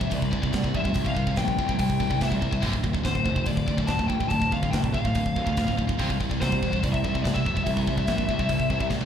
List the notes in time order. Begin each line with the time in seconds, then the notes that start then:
Already playing: E1 E5
0.01 C3 G3, kick
0.10 C2 C3 G3, kick, open hi-hat
0.14 D5
0.22 kick
0.31 C2 C3 G3, kick
0.42 C3 G3, kick
0.52 C2 C3 G3, kick, snare, open hi-hat
0.64 C3 G3, kick
0.74 F1 C3 G3 E5, kick
0.84 C3 G3, kick
0.94 C2 C3 G3, kick, open hi-hat
1.04 C3 G3 F5, kick
1.15 C2 C3 G3, kick
1.27 C3 G3, kick
1.36 A#1 C3 G3 G5, kick, snare, open hi-hat
1.48 kick
1.58 C2 C3 G3, kick
1.68 C3 G3, kick
1.79 C2 C3 G3 G5, kick, open hi-hat
1.90 kick
2.00 C2 C3 G3, kick
2.10 C3 G3, kick
2.21 C2 C3 G3 E5, kick, snare, open hi-hat
2.30 C3 G3, kick
2.42 C3 G3, kick
2.51 C3 G3, kick
2.60 D1 D2 A2 D3, kick, open hi-hat
2.72 D2 A2, kick
2.83 D1 D2 A2, kick
2.93 D2 A2, kick
3.03 D1 D2 A2 C5, kick, snare, open hi-hat
3.15 kick
3.24 F1 D2 A2, kick
3.36 D2 A2, kick
3.45 D1 D2 A2 D5, kick, open hi-hat
3.57 kick
3.66 D1 D2 A2, kick
3.77 D2 A2, kick
3.87 D1 D2 A2 A5, kick, snare, open hi-hat
3.98 D2 A2, kick
4.08 G1 D2 A2 G5, kick
4.20 D2 A2, kick
4.29 D1 D2 A2 A5, kick, open hi-hat
4.40 D2 A2, kick
4.51 D1 D2 A2 F5, kick
4.63 D2 A2, kick
4.70 C2 D2 A2 G5, kick, snare, open hi-hat
4.84 kick
4.93 D1 D2 A2 F5, kick
5.04 D2 A2, kick
5.15 D1 D2 A2, kick, open hi-hat
5.26 kick
5.36 D2 A2, kick
5.46 D2 A2, kick
5.57 D1 D2 A2, kick, snare, open hi-hat
5.67 D2 A2, kick
5.77 D2 A2, kick
5.87 D2 A2, kick
5.98 C2 C3 G3 C4, kick, open hi-hat
6.09 C3 G3, kick
6.20 C2 C3 G3, kick
6.30 C3 G3, kick
6.41 C2 C3 G3 C5, kick, snare, open hi-hat
6.52 kick
6.63 E1 C3 G3, kick
6.72 C3 G3, kick
6.83 C2 C3 G3 D5, kick, open hi-hat
6.93 E5, kick
7.04 C2 C3 G3, kick
7.14 C3 G3, kick
7.23 C2 C3 G3 D5, kick, snare, open hi-hat
7.34 C3 G3 E5, kick
7.45 F1 C3 G3, kick
7.56 C3 G3, kick
7.64 C2 C3 G3 E5, kick, open hi-hat
7.77 C3 G3, kick
7.87 C2 C3 G3, kick
7.97 C3 G3, kick
8.07 A#1 C3 G3, kick, snare, open hi-hat
8.18 kick
8.28 C2 C3 G3, kick
8.39 C3 G3, kick
8.49 C2 C3 G3, kick, open hi-hat
8.60 kick
8.70 C2 C3 G3, kick
8.80 C3 G3, kick
8.90 C2 C3 G3, kick, snare
9.00 C3 G3, high tom